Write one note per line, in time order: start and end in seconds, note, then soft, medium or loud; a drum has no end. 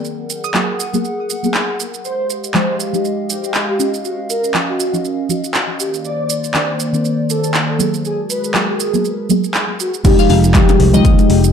0.00 0.52 F#3 medium
0.00 0.52 A#3 medium
0.00 0.52 B3 medium
0.00 0.53 G#4 medium
0.00 2.01 A#4 medium
0.05 2.03 G#4 medium
0.05 2.03 F#5 medium
0.05 shaker soft
0.30 shaker medium
0.44 0.80 D#6 medium
0.44 shaker soft
0.54 0.72 F#3 medium
0.54 0.72 A#3 medium
0.54 0.72 B3 medium
0.54 0.72 F#4 medium
0.54 clap loud
0.54 shaker soft
0.80 shaker medium
0.93 1.02 F#3 medium
0.93 1.03 A#3 medium
0.93 1.03 B3 medium
0.93 1.03 G#4 medium
0.93 shaker soft
1.05 shaker soft
1.30 shaker medium
1.43 2.03 F#3 medium
1.43 2.03 A#3 medium
1.43 2.04 B3 medium
1.43 2.04 G#4 medium
1.43 shaker soft
1.54 clap loud
1.54 shaker soft
1.80 shaker medium
1.94 shaker soft
2.04 4.03 G#3 medium
2.04 4.03 G4 medium
2.04 2.32 C5 loud
2.04 5.76 D#5 medium
2.04 5.76 F5 medium
2.04 shaker soft
2.30 shaker medium
2.44 shaker soft
2.54 2.90 F3 medium
2.54 2.90 G#3 medium
2.54 2.91 D#4 medium
2.54 2.91 G4 medium
2.54 2.76 C5 medium
2.54 clap loud
2.54 shaker soft
2.80 shaker medium
2.93 3.77 F3 medium
2.93 3.77 G#3 medium
2.93 3.77 D#4 medium
2.93 3.78 G4 medium
2.93 shaker soft
3.05 shaker soft
3.30 3.51 G4 medium
3.30 shaker medium
3.44 shaker soft
3.54 clap loud
3.54 shaker soft
3.69 3.89 G4 medium
3.78 4.52 C#4 medium
3.78 4.52 D#4 medium
3.78 4.52 F4 medium
3.78 4.53 F#4 medium
3.78 shaker medium
3.94 shaker soft
4.05 5.78 C#4 medium
4.05 4.20 F#4 medium
4.05 shaker soft
4.29 4.51 A#4 medium
4.29 shaker medium
4.44 shaker soft
4.54 4.72 F3 medium
4.54 4.72 C#4 medium
4.54 4.72 D#4 medium
4.54 4.72 F4 medium
4.54 clap loud
4.54 shaker soft
4.69 4.96 F#4 medium
4.80 shaker medium
4.93 5.02 F3 medium
4.93 5.03 C#4 medium
4.93 5.03 D#4 medium
4.93 5.03 F#4 medium
4.93 shaker soft
5.05 shaker soft
5.29 5.41 F3 medium
5.29 5.41 C#4 medium
5.29 5.41 D#4 medium
5.29 5.41 F#4 loud
5.29 shaker medium
5.44 shaker soft
5.54 clap loud
5.54 shaker soft
5.79 8.03 D#3 medium
5.79 8.03 A#3 medium
5.79 5.95 G4 medium
5.79 8.02 C5 medium
5.79 8.02 D5 medium
5.79 shaker medium
5.94 shaker soft
6.04 6.32 D5 medium
6.04 shaker soft
6.30 shaker medium
6.44 shaker soft
6.54 6.90 D#3 medium
6.54 6.90 C4 medium
6.54 6.91 D4 medium
6.54 6.91 A#4 medium
6.54 6.76 D5 medium
6.54 clap loud
6.54 shaker soft
6.80 shaker medium
6.93 7.76 D#3 medium
6.93 7.77 C4 medium
6.93 7.77 D4 medium
6.93 7.78 A#4 medium
6.93 shaker soft
7.05 shaker soft
7.30 7.51 A4 medium
7.30 shaker medium
7.44 shaker soft
7.54 clap loud
7.54 shaker soft
7.69 7.89 A4 medium
7.78 8.51 F#3 medium
7.78 8.52 A#3 medium
7.78 8.52 B3 medium
7.78 8.53 G#4 medium
7.78 shaker medium
7.94 shaker soft
8.05 10.03 G#3 medium
8.05 10.03 F#4 medium
8.05 8.20 G#4 medium
8.05 10.03 G#4 medium
8.05 10.03 A#4 medium
8.05 shaker soft
8.30 8.51 B4 medium
8.30 shaker medium
8.44 shaker soft
8.54 8.72 F#3 medium
8.54 8.72 A#3 medium
8.54 8.72 B3 medium
8.54 8.72 F#4 medium
8.54 clap loud
8.54 shaker soft
8.69 8.96 G#4 loud
8.80 shaker medium
8.93 9.02 F#3 medium
8.93 9.03 A#3 medium
8.93 9.03 B3 medium
8.93 9.03 G#4 medium
8.93 shaker soft
9.05 shaker soft
9.29 9.41 F#3 loud
9.29 9.41 A#3 medium
9.29 9.41 B3 medium
9.29 9.42 G#4 loud
9.29 shaker medium
9.44 shaker soft
9.54 clap loud
9.54 shaker soft
9.80 9.95 F#4 medium
9.80 shaker medium
9.94 shaker soft
10.04 10.15 F1 loud
10.04 10.50 F3 loud
10.04 10.50 G#3 medium
10.04 10.50 D#4 medium
10.04 10.51 G4 loud
10.04 kick loud
10.04 closed hi-hat medium
10.04 crash loud
10.04 shaker medium
10.19 10.26 F5 medium
10.19 closed hi-hat medium
10.19 shaker soft
10.30 10.63 F1 loud
10.30 10.39 F5 medium
10.30 open hi-hat loud
10.30 high bongo medium
10.44 closed hi-hat soft
10.44 shaker medium
10.54 10.90 F3 medium
10.54 10.90 G#3 medium
10.54 10.91 D#4 medium
10.54 10.91 G4 medium
10.54 kick loud
10.54 clap loud
10.54 closed hi-hat medium
10.54 high conga loud
10.54 shaker medium
10.69 closed hi-hat medium
10.69 high bongo medium
10.69 shaker soft
10.80 10.99 C2 loud
10.80 open hi-hat medium
10.93 11.52 F3 medium
10.93 11.52 G#3 medium
10.93 11.52 D#4 medium
10.93 11.52 G4 medium
10.93 11.44 D#5 medium
10.93 closed hi-hat soft
10.93 low conga medium
10.93 shaker medium
11.05 11.15 D#2 medium
11.05 kick loud
11.05 closed hi-hat medium
11.05 shaker medium
11.18 closed hi-hat medium
11.18 high bongo medium
11.18 shaker soft
11.30 11.52 F1 medium
11.30 open hi-hat loud
11.44 closed hi-hat soft
11.44 shaker medium